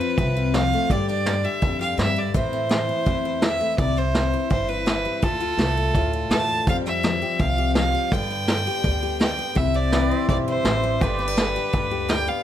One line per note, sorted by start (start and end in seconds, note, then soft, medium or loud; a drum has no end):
0.00 0.87 F2 medium
0.00 0.53 F3 medium
0.00 0.17 C4 medium
0.00 0.35 F4 medium
0.00 0.56 B4 medium
0.18 0.71 C2 medium
0.18 0.54 C3 medium
0.18 0.53 C4 medium
0.18 kick loud
0.18 closed hi-hat medium
0.37 0.88 F4 medium
0.54 0.88 F3 medium
0.54 0.88 C4 medium
0.54 0.93 F5 loud
0.54 snare loud
0.54 closed hi-hat medium
0.73 0.94 A3 medium
0.90 1.43 G2 medium
0.90 1.61 G2 medium
0.90 1.43 G4 medium
0.90 1.09 D5 medium
0.90 kick loud
0.90 closed hi-hat medium
1.08 1.61 D4 medium
1.08 1.46 D5 medium
1.08 closed hi-hat medium
1.26 2.34 D3 medium
1.26 snare loud
1.26 closed hi-hat medium
1.45 1.80 G4 medium
1.45 1.80 E5 medium
1.62 1.93 F2 medium
1.62 1.97 G2 medium
1.62 2.32 D4 medium
1.62 kick loud
1.62 closed hi-hat medium
1.81 2.32 G4 medium
1.81 1.97 F5 medium
1.98 2.16 F2 medium
1.98 2.28 G2 medium
1.98 2.20 E5 medium
1.98 snare loud
1.98 closed hi-hat medium
2.16 2.34 G2 medium
2.16 2.35 D5 medium
2.34 3.06 A2 medium
2.34 2.88 A2 medium
2.34 2.69 E3 medium
2.34 3.59 A3 medium
2.34 2.52 C4 medium
2.34 2.89 E4 medium
2.34 3.45 C5 medium
2.34 kick loud
2.34 closed hi-hat medium
2.53 3.06 C4 medium
2.53 closed hi-hat medium
2.69 3.41 E3 medium
2.69 snare loud
2.69 closed hi-hat medium
2.89 3.24 E4 medium
3.06 3.78 E2 medium
3.06 3.60 E2 medium
3.06 3.42 C4 medium
3.06 kick loud
3.06 closed hi-hat medium
3.25 3.78 E4 medium
3.42 3.76 E3 medium
3.42 3.77 C4 medium
3.42 3.78 E5 medium
3.42 snare loud
3.42 closed hi-hat medium
3.61 3.76 A3 medium
3.78 4.32 C2 medium
3.78 4.15 C3 medium
3.78 4.32 E4 medium
3.78 4.00 D5 medium
3.78 kick loud
3.78 closed hi-hat medium
3.96 4.49 C4 medium
3.96 4.51 C5 loud
3.96 closed hi-hat medium
4.15 4.85 E3 medium
4.15 snare loud
4.15 closed hi-hat medium
4.34 4.67 E4 medium
4.50 5.04 G1 medium
4.50 5.20 G2 medium
4.50 4.86 C4 soft
4.50 4.70 C5 medium
4.50 kick loud
4.50 closed hi-hat medium
4.69 5.23 E4 medium
4.69 5.25 B4 loud
4.86 5.20 E3 medium
4.86 5.21 C4 medium
4.86 snare loud
4.86 closed hi-hat medium
5.05 5.23 G3 medium
5.22 5.49 D2 medium
5.22 6.67 D3 medium
5.22 5.40 F4 medium
5.22 6.34 A4 loud
5.22 kick loud
5.22 closed hi-hat medium
5.40 5.77 F4 medium
5.40 closed hi-hat medium
5.57 5.89 C2 medium
5.57 6.29 A3 medium
5.57 snare loud
5.57 closed hi-hat medium
5.77 5.95 F4 medium
5.94 6.25 D2 medium
5.94 6.67 A2 medium
5.94 6.12 F4 medium
5.94 kick loud
5.94 closed hi-hat medium
6.13 6.30 F4 medium
6.30 6.61 E2 medium
6.30 6.65 A3 medium
6.30 6.65 F4 medium
6.30 6.68 A5 loud
6.30 snare loud
6.30 closed hi-hat medium
6.49 6.65 D4 medium
6.67 8.10 F2 medium
6.67 7.21 F2 medium
6.67 7.02 F3 medium
6.67 7.94 G3 medium
6.67 6.86 C4 medium
6.67 7.21 G4 medium
6.67 6.76 F5 loud
6.67 kick loud
6.67 closed hi-hat medium
6.85 7.38 C4 medium
6.85 7.41 E5 medium
6.85 closed hi-hat medium
7.03 7.74 F3 medium
7.03 snare loud
7.03 closed hi-hat medium
7.22 7.58 G4 medium
7.39 7.93 C2 medium
7.39 7.75 C3 medium
7.39 7.75 C4 medium
7.39 7.75 F5 loud
7.39 kick loud
7.39 closed hi-hat medium
7.58 8.14 G4 medium
7.75 8.10 F3 medium
7.75 8.10 C4 soft
7.75 8.14 F5 loud
7.75 snare loud
7.75 closed hi-hat medium
7.95 8.13 G3 medium
8.12 8.83 G2 medium
8.12 8.66 G2 medium
8.12 8.47 D3 medium
8.12 9.37 B3 medium
8.12 8.29 D4 medium
8.12 8.67 G4 medium
8.12 9.20 G5 loud
8.12 kick loud
8.12 closed hi-hat medium
8.30 8.84 D4 medium
8.30 closed hi-hat medium
8.48 9.19 D3 medium
8.48 snare loud
8.48 closed hi-hat medium
8.67 9.02 G4 medium
8.84 9.38 D2 medium
8.84 9.54 G2 medium
8.84 9.19 D4 medium
8.84 kick loud
8.84 closed hi-hat medium
9.03 9.55 G4 medium
9.20 9.56 D3 soft
9.20 9.54 D4 soft
9.20 9.59 G5 loud
9.20 snare loud
9.20 closed hi-hat medium
9.39 9.54 B3 soft
9.55 10.10 C2 medium
9.55 9.92 C3 medium
9.55 10.10 E4 medium
9.55 9.77 E5 medium
9.55 kick loud
9.55 closed hi-hat medium
9.74 10.29 C4 medium
9.74 10.29 D5 medium
9.74 closed hi-hat medium
9.92 10.63 E3 medium
9.92 11.00 G4 medium
9.92 10.13 B4 medium
9.92 10.19 D5 medium
9.92 snare loud
9.92 closed hi-hat medium
10.11 10.47 E4 medium
10.11 11.00 C5 medium
10.19 11.01 E5 medium
10.28 10.59 B1 medium
10.28 10.99 G2 medium
10.28 10.64 C4 medium
10.28 10.37 D5 medium
10.28 kick loud
10.28 closed hi-hat medium
10.48 11.01 E4 medium
10.48 11.04 C5 loud
10.64 10.95 A1 medium
10.64 10.99 E3 medium
10.64 10.99 C4 soft
10.64 snare loud
10.64 closed hi-hat medium
10.84 11.01 G3 medium
11.01 11.55 G1 medium
11.01 11.72 G2 medium
11.01 11.36 D3 medium
11.01 11.17 B3 medium
11.01 11.18 D4 medium
11.01 12.43 G4 medium
11.01 11.55 G4 medium
11.01 12.11 B4 medium
11.01 11.22 C5 medium
11.01 12.43 D5 medium
11.01 kick loud
11.01 closed hi-hat medium
11.19 11.28 B3 medium
11.19 12.43 B4 medium
11.19 closed hi-hat medium
11.28 11.72 D4 soft
11.37 12.07 D3 medium
11.37 snare loud
11.37 closed hi-hat medium
11.56 11.90 G4 medium
11.73 12.27 D2 medium
11.73 12.43 G2 medium
11.73 12.08 D4 medium
11.73 kick loud
11.73 closed hi-hat medium
11.91 12.43 G4 medium
12.09 12.43 D3 medium
12.09 12.43 D4 medium
12.09 12.30 G5 loud
12.09 snare loud
12.09 closed hi-hat medium
12.28 12.43 B3 medium
12.28 12.43 F5 medium